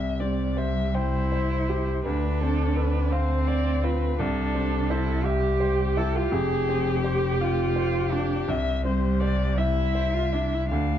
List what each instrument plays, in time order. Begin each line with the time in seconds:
Already playing: upright piano C2, double bass C2, violin E5
0.20 cello G3, upright piano C4, violin D5
0.57 upright piano C5, violin E5
0.94 cello E4, violin C5, upright piano G5
1.32 upright piano C5
1.69 upright piano G4
2.04 double bass D2, upright piano D2, cello D4, violin B4
2.41 upright piano C4, violin A4
2.76 upright piano A4, violin B4
3.11 cello C4, violin C5, upright piano F5
3.48 upright piano C5, violin D5
3.83 upright piano F4, violin B4
4.18 double bass C2, upright piano C2, cello D4, violin A4
4.55 upright piano C4
4.90 cello E4, upright piano C5
5.25 cello G4, violin G4, upright piano E5
5.60 upright piano C5
5.97 upright piano E4, cello A4
6.16 cello F4
6.31 double bass F1, upright piano F2, cello G#4
6.69 upright piano C4
7.03 cello G4, upright piano C5
7.41 cello F4, upright piano F5
7.76 upright piano C5
8.12 cello D4, upright piano F4
8.48 upright piano C2, double bass C2, violin E5
8.84 cello G3, upright piano C4, violin C5
9.20 upright piano C5, violin D5
9.58 cello E4, violin E5, upright piano E5
9.95 upright piano C5
10.13 cello F4
10.32 cello D4, upright piano E4
10.54 cello E4
10.71 double bass D2, upright piano D2, cello D4, violin F5